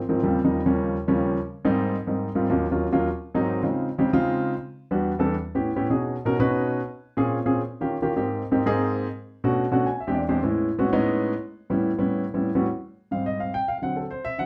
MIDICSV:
0, 0, Header, 1, 2, 480
1, 0, Start_track
1, 0, Tempo, 283152
1, 392, Time_signature, 4, 2, 24, 8
1, 24509, End_track
2, 0, Start_track
2, 0, Title_t, "Grand piano"
2, 0, Program_c, 0, 0
2, 150, Note_on_c, 0, 44, 69
2, 152, Note_on_c, 0, 51, 68
2, 155, Note_on_c, 0, 53, 72
2, 157, Note_on_c, 0, 58, 71
2, 160, Note_on_c, 0, 60, 81
2, 319, Note_off_c, 0, 44, 0
2, 320, Note_off_c, 0, 51, 0
2, 322, Note_off_c, 0, 53, 0
2, 323, Note_off_c, 0, 58, 0
2, 324, Note_off_c, 0, 60, 0
2, 389, Note_on_c, 0, 39, 71
2, 392, Note_on_c, 0, 49, 65
2, 394, Note_on_c, 0, 53, 73
2, 396, Note_on_c, 0, 55, 77
2, 398, Note_on_c, 0, 58, 73
2, 401, Note_on_c, 0, 60, 84
2, 642, Note_off_c, 0, 39, 0
2, 644, Note_off_c, 0, 49, 0
2, 645, Note_off_c, 0, 53, 0
2, 646, Note_off_c, 0, 55, 0
2, 647, Note_off_c, 0, 58, 0
2, 649, Note_off_c, 0, 60, 0
2, 748, Note_on_c, 0, 39, 73
2, 753, Note_on_c, 0, 49, 64
2, 754, Note_on_c, 0, 53, 63
2, 754, Note_on_c, 0, 58, 71
2, 757, Note_on_c, 0, 55, 68
2, 759, Note_on_c, 0, 63, 89
2, 1002, Note_off_c, 0, 39, 0
2, 1005, Note_off_c, 0, 49, 0
2, 1005, Note_off_c, 0, 53, 0
2, 1006, Note_off_c, 0, 58, 0
2, 1007, Note_off_c, 0, 55, 0
2, 1008, Note_off_c, 0, 63, 0
2, 1112, Note_on_c, 0, 39, 80
2, 1115, Note_on_c, 0, 49, 71
2, 1118, Note_on_c, 0, 53, 72
2, 1118, Note_on_c, 0, 58, 81
2, 1119, Note_on_c, 0, 55, 77
2, 1122, Note_on_c, 0, 61, 93
2, 1617, Note_off_c, 0, 39, 0
2, 1618, Note_off_c, 0, 49, 0
2, 1620, Note_off_c, 0, 53, 0
2, 1620, Note_off_c, 0, 55, 0
2, 1620, Note_off_c, 0, 58, 0
2, 1622, Note_off_c, 0, 61, 0
2, 1825, Note_on_c, 0, 39, 82
2, 1826, Note_on_c, 0, 49, 76
2, 1830, Note_on_c, 0, 55, 79
2, 1831, Note_on_c, 0, 53, 84
2, 1834, Note_on_c, 0, 58, 80
2, 1834, Note_on_c, 0, 61, 96
2, 2310, Note_off_c, 0, 39, 0
2, 2310, Note_off_c, 0, 49, 0
2, 2312, Note_off_c, 0, 55, 0
2, 2313, Note_off_c, 0, 53, 0
2, 2314, Note_off_c, 0, 58, 0
2, 2314, Note_off_c, 0, 61, 0
2, 2791, Note_on_c, 0, 44, 95
2, 2791, Note_on_c, 0, 55, 79
2, 2795, Note_on_c, 0, 60, 89
2, 2797, Note_on_c, 0, 58, 86
2, 2799, Note_on_c, 0, 63, 100
2, 3297, Note_off_c, 0, 55, 0
2, 3298, Note_off_c, 0, 44, 0
2, 3300, Note_off_c, 0, 60, 0
2, 3301, Note_off_c, 0, 58, 0
2, 3302, Note_off_c, 0, 63, 0
2, 3510, Note_on_c, 0, 44, 70
2, 3515, Note_on_c, 0, 55, 53
2, 3516, Note_on_c, 0, 58, 63
2, 3520, Note_on_c, 0, 63, 64
2, 3521, Note_on_c, 0, 60, 53
2, 3850, Note_off_c, 0, 44, 0
2, 3852, Note_off_c, 0, 55, 0
2, 3853, Note_off_c, 0, 58, 0
2, 3854, Note_off_c, 0, 63, 0
2, 3855, Note_off_c, 0, 60, 0
2, 3988, Note_on_c, 0, 44, 79
2, 3990, Note_on_c, 0, 55, 72
2, 3995, Note_on_c, 0, 58, 68
2, 3996, Note_on_c, 0, 60, 65
2, 3996, Note_on_c, 0, 65, 81
2, 4161, Note_off_c, 0, 44, 0
2, 4162, Note_off_c, 0, 55, 0
2, 4164, Note_off_c, 0, 58, 0
2, 4165, Note_off_c, 0, 60, 0
2, 4165, Note_off_c, 0, 65, 0
2, 4230, Note_on_c, 0, 39, 89
2, 4234, Note_on_c, 0, 54, 71
2, 4238, Note_on_c, 0, 58, 72
2, 4240, Note_on_c, 0, 61, 71
2, 4244, Note_on_c, 0, 65, 83
2, 4486, Note_off_c, 0, 39, 0
2, 4488, Note_off_c, 0, 54, 0
2, 4490, Note_off_c, 0, 58, 0
2, 4491, Note_off_c, 0, 61, 0
2, 4493, Note_off_c, 0, 65, 0
2, 4597, Note_on_c, 0, 39, 73
2, 4602, Note_on_c, 0, 54, 67
2, 4602, Note_on_c, 0, 58, 69
2, 4604, Note_on_c, 0, 61, 66
2, 4609, Note_on_c, 0, 65, 88
2, 4850, Note_off_c, 0, 39, 0
2, 4852, Note_off_c, 0, 54, 0
2, 4852, Note_off_c, 0, 58, 0
2, 4853, Note_off_c, 0, 61, 0
2, 4856, Note_off_c, 0, 65, 0
2, 4954, Note_on_c, 0, 39, 81
2, 4957, Note_on_c, 0, 54, 80
2, 4958, Note_on_c, 0, 58, 76
2, 4963, Note_on_c, 0, 61, 84
2, 4963, Note_on_c, 0, 65, 95
2, 5197, Note_off_c, 0, 39, 0
2, 5198, Note_off_c, 0, 54, 0
2, 5198, Note_off_c, 0, 58, 0
2, 5201, Note_off_c, 0, 61, 0
2, 5201, Note_off_c, 0, 65, 0
2, 5671, Note_on_c, 0, 44, 80
2, 5675, Note_on_c, 0, 58, 72
2, 5677, Note_on_c, 0, 54, 83
2, 5678, Note_on_c, 0, 60, 69
2, 5681, Note_on_c, 0, 63, 98
2, 6126, Note_off_c, 0, 60, 0
2, 6129, Note_off_c, 0, 63, 0
2, 6147, Note_on_c, 0, 49, 75
2, 6152, Note_on_c, 0, 60, 71
2, 6153, Note_on_c, 0, 56, 65
2, 6154, Note_on_c, 0, 63, 65
2, 6156, Note_off_c, 0, 44, 0
2, 6157, Note_off_c, 0, 58, 0
2, 6157, Note_on_c, 0, 65, 70
2, 6159, Note_off_c, 0, 54, 0
2, 6574, Note_off_c, 0, 49, 0
2, 6576, Note_off_c, 0, 60, 0
2, 6577, Note_off_c, 0, 56, 0
2, 6578, Note_off_c, 0, 63, 0
2, 6579, Note_off_c, 0, 65, 0
2, 6754, Note_on_c, 0, 49, 90
2, 6758, Note_on_c, 0, 56, 77
2, 6761, Note_on_c, 0, 60, 80
2, 6763, Note_on_c, 0, 63, 68
2, 6763, Note_on_c, 0, 67, 91
2, 6925, Note_off_c, 0, 49, 0
2, 6927, Note_off_c, 0, 56, 0
2, 6929, Note_off_c, 0, 60, 0
2, 6930, Note_off_c, 0, 63, 0
2, 6930, Note_off_c, 0, 67, 0
2, 7002, Note_on_c, 0, 49, 95
2, 7005, Note_on_c, 0, 56, 85
2, 7006, Note_on_c, 0, 60, 97
2, 7008, Note_on_c, 0, 63, 80
2, 7010, Note_on_c, 0, 65, 116
2, 7674, Note_off_c, 0, 49, 0
2, 7675, Note_off_c, 0, 56, 0
2, 7676, Note_off_c, 0, 60, 0
2, 7677, Note_off_c, 0, 63, 0
2, 7678, Note_off_c, 0, 65, 0
2, 8321, Note_on_c, 0, 55, 75
2, 8322, Note_on_c, 0, 40, 74
2, 8325, Note_on_c, 0, 59, 78
2, 8329, Note_on_c, 0, 62, 76
2, 8333, Note_on_c, 0, 66, 82
2, 8657, Note_off_c, 0, 55, 0
2, 8658, Note_off_c, 0, 40, 0
2, 8659, Note_off_c, 0, 59, 0
2, 8661, Note_off_c, 0, 62, 0
2, 8664, Note_off_c, 0, 66, 0
2, 8800, Note_on_c, 0, 40, 89
2, 8805, Note_on_c, 0, 55, 71
2, 8808, Note_on_c, 0, 59, 75
2, 8810, Note_on_c, 0, 62, 75
2, 8811, Note_on_c, 0, 69, 90
2, 9041, Note_off_c, 0, 40, 0
2, 9043, Note_off_c, 0, 55, 0
2, 9045, Note_off_c, 0, 59, 0
2, 9046, Note_off_c, 0, 62, 0
2, 9046, Note_off_c, 0, 69, 0
2, 9403, Note_on_c, 0, 45, 74
2, 9406, Note_on_c, 0, 59, 71
2, 9408, Note_on_c, 0, 61, 68
2, 9409, Note_on_c, 0, 64, 71
2, 9414, Note_on_c, 0, 67, 83
2, 9654, Note_off_c, 0, 45, 0
2, 9656, Note_off_c, 0, 59, 0
2, 9657, Note_off_c, 0, 61, 0
2, 9658, Note_off_c, 0, 64, 0
2, 9660, Note_off_c, 0, 67, 0
2, 9766, Note_on_c, 0, 45, 81
2, 9768, Note_on_c, 0, 59, 72
2, 9769, Note_on_c, 0, 61, 74
2, 9772, Note_on_c, 0, 64, 76
2, 9773, Note_on_c, 0, 67, 86
2, 9932, Note_off_c, 0, 45, 0
2, 9933, Note_off_c, 0, 59, 0
2, 9933, Note_off_c, 0, 61, 0
2, 9935, Note_off_c, 0, 64, 0
2, 9935, Note_off_c, 0, 67, 0
2, 10000, Note_on_c, 0, 47, 65
2, 10004, Note_on_c, 0, 61, 69
2, 10005, Note_on_c, 0, 63, 63
2, 10007, Note_on_c, 0, 66, 59
2, 10010, Note_on_c, 0, 68, 76
2, 10421, Note_off_c, 0, 47, 0
2, 10423, Note_off_c, 0, 61, 0
2, 10423, Note_off_c, 0, 63, 0
2, 10424, Note_off_c, 0, 66, 0
2, 10426, Note_off_c, 0, 68, 0
2, 10600, Note_on_c, 0, 47, 89
2, 10603, Note_on_c, 0, 61, 74
2, 10608, Note_on_c, 0, 63, 72
2, 10608, Note_on_c, 0, 66, 72
2, 10613, Note_on_c, 0, 70, 102
2, 10769, Note_off_c, 0, 47, 0
2, 10770, Note_off_c, 0, 61, 0
2, 10773, Note_off_c, 0, 63, 0
2, 10773, Note_off_c, 0, 66, 0
2, 10775, Note_off_c, 0, 70, 0
2, 10840, Note_on_c, 0, 47, 91
2, 10842, Note_on_c, 0, 61, 92
2, 10842, Note_on_c, 0, 63, 88
2, 10845, Note_on_c, 0, 66, 91
2, 10849, Note_on_c, 0, 71, 109
2, 11513, Note_off_c, 0, 47, 0
2, 11514, Note_off_c, 0, 61, 0
2, 11514, Note_off_c, 0, 63, 0
2, 11515, Note_off_c, 0, 66, 0
2, 11517, Note_off_c, 0, 71, 0
2, 12153, Note_on_c, 0, 46, 91
2, 12155, Note_on_c, 0, 60, 64
2, 12158, Note_on_c, 0, 61, 82
2, 12163, Note_on_c, 0, 65, 79
2, 12164, Note_on_c, 0, 68, 97
2, 12493, Note_off_c, 0, 46, 0
2, 12494, Note_off_c, 0, 60, 0
2, 12496, Note_off_c, 0, 61, 0
2, 12498, Note_off_c, 0, 65, 0
2, 12499, Note_off_c, 0, 68, 0
2, 12635, Note_on_c, 0, 60, 70
2, 12638, Note_on_c, 0, 46, 81
2, 12639, Note_on_c, 0, 61, 72
2, 12645, Note_on_c, 0, 65, 72
2, 12646, Note_on_c, 0, 68, 92
2, 12878, Note_off_c, 0, 60, 0
2, 12879, Note_off_c, 0, 46, 0
2, 12880, Note_off_c, 0, 61, 0
2, 12883, Note_off_c, 0, 65, 0
2, 12883, Note_off_c, 0, 68, 0
2, 13234, Note_on_c, 0, 51, 72
2, 13237, Note_on_c, 0, 58, 69
2, 13241, Note_on_c, 0, 61, 67
2, 13243, Note_on_c, 0, 65, 68
2, 13247, Note_on_c, 0, 67, 87
2, 13489, Note_off_c, 0, 51, 0
2, 13491, Note_off_c, 0, 58, 0
2, 13493, Note_off_c, 0, 61, 0
2, 13494, Note_off_c, 0, 65, 0
2, 13496, Note_off_c, 0, 67, 0
2, 13597, Note_on_c, 0, 51, 77
2, 13598, Note_on_c, 0, 61, 66
2, 13599, Note_on_c, 0, 58, 75
2, 13602, Note_on_c, 0, 65, 75
2, 13605, Note_on_c, 0, 67, 94
2, 13767, Note_off_c, 0, 51, 0
2, 13767, Note_off_c, 0, 61, 0
2, 13768, Note_off_c, 0, 58, 0
2, 13769, Note_off_c, 0, 65, 0
2, 13771, Note_off_c, 0, 67, 0
2, 13838, Note_on_c, 0, 44, 69
2, 13839, Note_on_c, 0, 58, 71
2, 13843, Note_on_c, 0, 60, 64
2, 13848, Note_on_c, 0, 63, 66
2, 13849, Note_on_c, 0, 67, 90
2, 14259, Note_off_c, 0, 44, 0
2, 14260, Note_off_c, 0, 58, 0
2, 14261, Note_off_c, 0, 60, 0
2, 14264, Note_off_c, 0, 63, 0
2, 14264, Note_off_c, 0, 67, 0
2, 14435, Note_on_c, 0, 44, 78
2, 14438, Note_on_c, 0, 58, 77
2, 14440, Note_on_c, 0, 60, 74
2, 14441, Note_on_c, 0, 63, 77
2, 14445, Note_on_c, 0, 67, 86
2, 14606, Note_off_c, 0, 44, 0
2, 14607, Note_off_c, 0, 58, 0
2, 14608, Note_off_c, 0, 60, 0
2, 14609, Note_off_c, 0, 63, 0
2, 14610, Note_off_c, 0, 67, 0
2, 14677, Note_on_c, 0, 44, 92
2, 14680, Note_on_c, 0, 58, 96
2, 14685, Note_on_c, 0, 60, 90
2, 14686, Note_on_c, 0, 63, 82
2, 14692, Note_on_c, 0, 68, 110
2, 15350, Note_off_c, 0, 44, 0
2, 15352, Note_off_c, 0, 58, 0
2, 15354, Note_off_c, 0, 60, 0
2, 15355, Note_off_c, 0, 63, 0
2, 15358, Note_off_c, 0, 68, 0
2, 16000, Note_on_c, 0, 47, 88
2, 16001, Note_on_c, 0, 57, 67
2, 16002, Note_on_c, 0, 61, 78
2, 16004, Note_on_c, 0, 62, 68
2, 16009, Note_on_c, 0, 66, 98
2, 16335, Note_off_c, 0, 47, 0
2, 16336, Note_off_c, 0, 57, 0
2, 16336, Note_off_c, 0, 61, 0
2, 16337, Note_off_c, 0, 62, 0
2, 16340, Note_off_c, 0, 66, 0
2, 16468, Note_on_c, 0, 47, 78
2, 16473, Note_on_c, 0, 61, 83
2, 16475, Note_on_c, 0, 57, 67
2, 16476, Note_on_c, 0, 78, 74
2, 16478, Note_on_c, 0, 62, 70
2, 16482, Note_on_c, 0, 66, 90
2, 16700, Note_off_c, 0, 78, 0
2, 16713, Note_off_c, 0, 47, 0
2, 16714, Note_on_c, 0, 80, 79
2, 16716, Note_off_c, 0, 61, 0
2, 16717, Note_off_c, 0, 57, 0
2, 16718, Note_off_c, 0, 62, 0
2, 16720, Note_off_c, 0, 66, 0
2, 16939, Note_off_c, 0, 80, 0
2, 16959, Note_on_c, 0, 76, 69
2, 17075, Note_on_c, 0, 40, 80
2, 17078, Note_on_c, 0, 60, 67
2, 17079, Note_on_c, 0, 56, 73
2, 17082, Note_on_c, 0, 62, 73
2, 17083, Note_on_c, 0, 67, 90
2, 17182, Note_off_c, 0, 76, 0
2, 17199, Note_on_c, 0, 74, 70
2, 17328, Note_off_c, 0, 40, 0
2, 17330, Note_off_c, 0, 56, 0
2, 17330, Note_off_c, 0, 60, 0
2, 17332, Note_off_c, 0, 62, 0
2, 17332, Note_off_c, 0, 67, 0
2, 17422, Note_off_c, 0, 74, 0
2, 17434, Note_on_c, 0, 40, 89
2, 17439, Note_on_c, 0, 72, 80
2, 17440, Note_on_c, 0, 56, 77
2, 17441, Note_on_c, 0, 60, 67
2, 17442, Note_on_c, 0, 62, 74
2, 17445, Note_on_c, 0, 67, 88
2, 17604, Note_off_c, 0, 40, 0
2, 17607, Note_off_c, 0, 56, 0
2, 17607, Note_off_c, 0, 60, 0
2, 17608, Note_off_c, 0, 62, 0
2, 17609, Note_off_c, 0, 67, 0
2, 17662, Note_off_c, 0, 72, 0
2, 17676, Note_on_c, 0, 45, 84
2, 17684, Note_on_c, 0, 56, 74
2, 17685, Note_on_c, 0, 59, 60
2, 17686, Note_on_c, 0, 61, 68
2, 17687, Note_on_c, 0, 64, 82
2, 18096, Note_off_c, 0, 45, 0
2, 18100, Note_off_c, 0, 56, 0
2, 18101, Note_off_c, 0, 59, 0
2, 18102, Note_off_c, 0, 61, 0
2, 18102, Note_off_c, 0, 64, 0
2, 18280, Note_on_c, 0, 45, 82
2, 18285, Note_on_c, 0, 56, 75
2, 18286, Note_on_c, 0, 59, 79
2, 18290, Note_on_c, 0, 61, 80
2, 18291, Note_on_c, 0, 66, 88
2, 18446, Note_off_c, 0, 45, 0
2, 18449, Note_off_c, 0, 56, 0
2, 18450, Note_off_c, 0, 59, 0
2, 18451, Note_off_c, 0, 61, 0
2, 18452, Note_off_c, 0, 66, 0
2, 18521, Note_on_c, 0, 45, 102
2, 18524, Note_on_c, 0, 59, 102
2, 18525, Note_on_c, 0, 56, 97
2, 18527, Note_on_c, 0, 63, 107
2, 18529, Note_on_c, 0, 61, 85
2, 19190, Note_off_c, 0, 45, 0
2, 19192, Note_off_c, 0, 56, 0
2, 19192, Note_off_c, 0, 59, 0
2, 19193, Note_off_c, 0, 63, 0
2, 19194, Note_off_c, 0, 61, 0
2, 19830, Note_on_c, 0, 45, 72
2, 19835, Note_on_c, 0, 55, 78
2, 19835, Note_on_c, 0, 61, 68
2, 19836, Note_on_c, 0, 59, 73
2, 19840, Note_on_c, 0, 64, 89
2, 20168, Note_off_c, 0, 45, 0
2, 20171, Note_off_c, 0, 55, 0
2, 20171, Note_off_c, 0, 59, 0
2, 20171, Note_off_c, 0, 61, 0
2, 20173, Note_off_c, 0, 64, 0
2, 20312, Note_on_c, 0, 45, 78
2, 20313, Note_on_c, 0, 55, 68
2, 20319, Note_on_c, 0, 59, 78
2, 20319, Note_on_c, 0, 61, 74
2, 20322, Note_on_c, 0, 64, 89
2, 20733, Note_off_c, 0, 45, 0
2, 20733, Note_off_c, 0, 55, 0
2, 20736, Note_off_c, 0, 59, 0
2, 20736, Note_off_c, 0, 61, 0
2, 20738, Note_off_c, 0, 64, 0
2, 20915, Note_on_c, 0, 45, 68
2, 20917, Note_on_c, 0, 55, 69
2, 20917, Note_on_c, 0, 59, 67
2, 20923, Note_on_c, 0, 61, 61
2, 20925, Note_on_c, 0, 64, 79
2, 21166, Note_off_c, 0, 45, 0
2, 21167, Note_off_c, 0, 55, 0
2, 21167, Note_off_c, 0, 59, 0
2, 21170, Note_off_c, 0, 61, 0
2, 21171, Note_off_c, 0, 64, 0
2, 21273, Note_on_c, 0, 45, 82
2, 21276, Note_on_c, 0, 55, 78
2, 21277, Note_on_c, 0, 59, 74
2, 21280, Note_on_c, 0, 61, 82
2, 21283, Note_on_c, 0, 66, 83
2, 21441, Note_off_c, 0, 45, 0
2, 21443, Note_off_c, 0, 55, 0
2, 21443, Note_off_c, 0, 59, 0
2, 21444, Note_off_c, 0, 61, 0
2, 21446, Note_off_c, 0, 66, 0
2, 22229, Note_on_c, 0, 44, 55
2, 22238, Note_on_c, 0, 55, 49
2, 22238, Note_on_c, 0, 77, 85
2, 22250, Note_on_c, 0, 60, 57
2, 22467, Note_off_c, 0, 77, 0
2, 22481, Note_on_c, 0, 75, 84
2, 22709, Note_off_c, 0, 75, 0
2, 22716, Note_on_c, 0, 77, 81
2, 22913, Note_off_c, 0, 44, 0
2, 22918, Note_off_c, 0, 55, 0
2, 22924, Note_off_c, 0, 60, 0
2, 22946, Note_off_c, 0, 77, 0
2, 22956, Note_on_c, 0, 79, 95
2, 23186, Note_off_c, 0, 79, 0
2, 23195, Note_on_c, 0, 77, 88
2, 23337, Note_off_c, 0, 77, 0
2, 23363, Note_on_c, 0, 77, 58
2, 23399, Note_off_c, 0, 77, 0
2, 23424, Note_on_c, 0, 50, 49
2, 23435, Note_on_c, 0, 54, 48
2, 23441, Note_on_c, 0, 78, 81
2, 23445, Note_on_c, 0, 60, 56
2, 23668, Note_off_c, 0, 78, 0
2, 23673, Note_on_c, 0, 69, 56
2, 23746, Note_off_c, 0, 50, 0
2, 23751, Note_off_c, 0, 54, 0
2, 23757, Note_off_c, 0, 60, 0
2, 23904, Note_off_c, 0, 69, 0
2, 23912, Note_on_c, 0, 72, 83
2, 24143, Note_off_c, 0, 72, 0
2, 24149, Note_on_c, 0, 76, 101
2, 24381, Note_off_c, 0, 76, 0
2, 24382, Note_on_c, 0, 50, 51
2, 24390, Note_on_c, 0, 54, 48
2, 24394, Note_on_c, 0, 78, 96
2, 24395, Note_on_c, 0, 60, 60
2, 24509, Note_off_c, 0, 50, 0
2, 24509, Note_off_c, 0, 54, 0
2, 24509, Note_off_c, 0, 60, 0
2, 24509, Note_off_c, 0, 78, 0
2, 24509, End_track
0, 0, End_of_file